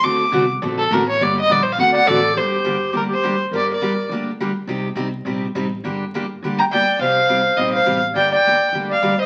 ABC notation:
X:1
M:4/4
L:1/8
Q:"Swing" 1/4=207
K:Gm
V:1 name="Violin"
d'3 z2 A B ^c | d e (3d c f ^f f d2 | c4 B c2 z | d d3 z4 |
z8 | z4 z b g2 | f4 e f2 z | g g3 z f2 e |]
V:2 name="Clarinet"
z8 | z4 z d A2 | G4 G G2 z | B B3 z4 |
z8 | z4 z g d2 | c4 c c2 z | d d3 z d2 c |]
V:3 name="Steel-string acoustic guitar"
[D,A,C^FA] z [D,A,CFA] z [D,A,CFA] z [D,A,CFA] z | [D,G,B,DG] z [D,G,B,DG] z [D,A,C^FA] z [D,A,CFA] z | [D,G,B,DG] z [D,G,B,DG] z [D,G,B,DG] z [D,G,B,DG] z | [D,G,B,DG] z [D,G,B,DG] z [D,G,B,DG] z [D,G,B,DG] z |
[C,G,CEG] z [C,G,CEG] z [C,G,CEG] z [C,G,CEG] z | [D,G,B,DG] z [D,G,B,DG] z [D,G,B,DG] z [D,G,B,DG] z | [C,G,CEG] z [C,G,CEG] z [C,G,CEG] z [C,G,CEG] z | [D,G,B,DG] z [D,G,B,DG] z [D,G,B,DG] z [D,G,B,DG] z |]
V:4 name="Upright bass" clef=bass
D,,2 C,,2 B,,,2 A,,,2 | G,,,2 B,,,2 D,,2 A,,,2 | G,,,4 D,,4 | G,,,4 D,,4 |
C,,2 C,,2 B,,,2 A,,,2 | G,,,4 D,,4 | C,,4 B,,,2 A,,,2 | G,,,4 D,,4 |]